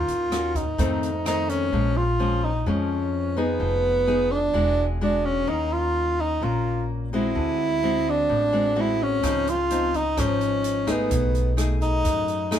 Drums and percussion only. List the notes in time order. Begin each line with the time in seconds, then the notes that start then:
0.08 closed hi-hat
0.32 cross-stick, closed hi-hat
0.55 kick, closed hi-hat
0.79 kick, closed hi-hat
1.03 closed hi-hat
1.26 cross-stick, closed hi-hat
1.49 closed hi-hat
9.23 kick, cross-stick, closed hi-hat
9.47 closed hi-hat
9.70 closed hi-hat
9.94 kick, closed hi-hat
10.17 kick, cross-stick, closed hi-hat
10.41 closed hi-hat
10.64 closed hi-hat
10.87 kick, cross-stick, closed hi-hat
11.11 kick, closed hi-hat
11.35 closed hi-hat
11.58 cross-stick, closed hi-hat
11.81 kick, closed hi-hat
12.05 kick, closed hi-hat
12.28 closed hi-hat
12.52 cross-stick, closed hi-hat